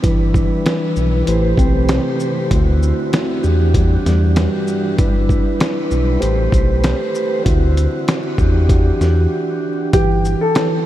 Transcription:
0.02 sub bass G1, tine electric piano E3, tonewheel organ G3 D4 E4 B4, kick, closed hi-hat
0.34 kick, shaker
0.66 tine electric piano E3, snare, closed hi-hat
0.96 sub bass B1, shaker
1.26 sub bass A1, tine electric piano E3, tonewheel organ A3 G4 C5, closed hi-hat
1.57 sub bass B1, tine electric piano C4, kick, closed hi-hat, shaker
1.89 tine electric piano C3, snare, closed hi-hat
2.20 shaker
2.51 tine electric piano D2, sub bass D2, tonewheel organ D3 C4 E4 F#4, kick, closed hi-hat
2.83 shaker
3.12 tine electric piano D2, snare, closed hi-hat
3.43 sub bass E2, tonewheel organ E3 D4 G4, shaker
3.74 tine electric piano G2, kick, closed hi-hat
4.06 sub bass E2, tine electric piano G3, snare, closed hi-hat, shaker
4.36 tine electric piano G2, snare, closed hi-hat
4.68 shaker
4.98 sub bass G1, tonewheel organ G3 E4 B4, kick, closed hi-hat
5.29 kick, shaker
5.60 snare, closed hi-hat
5.91 sub bass B1, shaker
6.20 sub bass A1, tonewheel organ A3 G4 C5, closed hi-hat
6.52 sub bass B1, kick, closed hi-hat, shaker
6.84 snare, closed hi-hat
7.15 shaker
7.44 sub bass D2, tonewheel organ D3 C4 E4 F#4, kick, closed hi-hat
7.77 closed hi-hat, shaker
8.08 snare, closed hi-hat
8.38 sub bass E2, tonewheel organ E3 D4 G4, kick, shaker
8.69 kick, closed hi-hat
9.01 sub bass E2, snare, shaker
9.93 sub bass G1, tine electric piano E3, upright piano G4, kick, closed hi-hat
10.25 shaker
10.41 upright piano A4
10.55 tine electric piano E3, snare, closed hi-hat

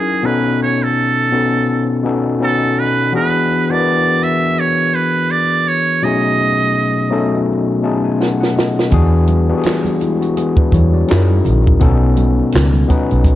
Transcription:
Already playing: tine electric piano F#3 C#4 D#4 E4 G#4 A#4, muted trumpet G#4
0.23 tine electric piano B2 B3 C#4 D#4 A4, muted trumpet B4
0.62 muted trumpet C#5
0.83 muted trumpet A4
1.31 tine electric piano B2 B3 C#4 D#4 A4
2.03 tine electric piano B2 B3 C#4 D#4 A4
2.40 tine electric piano B2 B3 C#4 D#4 A4
2.44 muted trumpet A4
2.79 muted trumpet B4
3.12 tine electric piano E3 B3 D4 F#4 G#4, muted trumpet B4
3.70 tine electric piano E3 B3 D4 F#4 A#4, muted trumpet D5
3.80 tine electric piano B4
4.23 muted trumpet E5
4.60 muted trumpet C#5
4.95 muted trumpet B4
5.31 muted trumpet D5
5.68 muted trumpet C#5
6.02 tine electric piano B2 F#3 A3 C#4 D#4 G#4, muted trumpet D#5
7.10 tine electric piano B2 F#3 A3 C#4 D#4 A4
7.82 tine electric piano B2 F#3 A3 C#4 D#4 G#4 A5
8.05 tine electric piano G#5
8.20 tine electric piano F#5, snare
8.40 tine electric piano F#5, snare
8.56 tine electric piano D#5, snare
8.79 snare
8.90 fingered electric bass E2, tine electric piano E3 B3 D4 F#4 G#4, kick, closed hi-hat, low conga
9.28 closed hi-hat, muted conga, high conga
9.48 tine electric piano E3 B3 D4 F#4 G4
9.58 tine electric piano G#4
9.63 snare, clap, closed hi-hat, high conga
9.84 closed hi-hat, high conga
10.01 tine electric piano G#3 E4, closed hi-hat, high conga
10.21 tine electric piano F#4, closed hi-hat
10.37 tine electric piano B3 G#4, closed hi-hat, muted conga
10.57 tine electric piano D4 B4, kick
10.72 fingered electric bass E2, tine electric piano E4 C#5, kick, closed hi-hat, muted conga, high conga
10.93 tine electric piano F#4 D5
11.08 fingered electric bass F#2, tine electric piano F#3 C#4 D#4 E4 G#4 A#4, snare, closed hi-hat
11.12 clap
11.30 high conga
11.45 fingered electric bass A#1, closed hi-hat, low conga
11.67 kick
11.79 fingered electric bass B1, tine electric piano B2 B3 C#4 D#4 A4, kick, closed hi-hat, muted conga, low conga
12.17 closed hi-hat, muted conga, high conga
12.52 fingered electric bass C#2, snare, clap, closed hi-hat, muted conga, high conga
12.73 closed hi-hat, high conga
12.88 tine electric piano B2 B3 C#4 D#4 B4, kick, closed hi-hat, muted conga, high conga
13.11 fingered electric bass B1, closed hi-hat
13.24 kick, closed hi-hat, muted conga

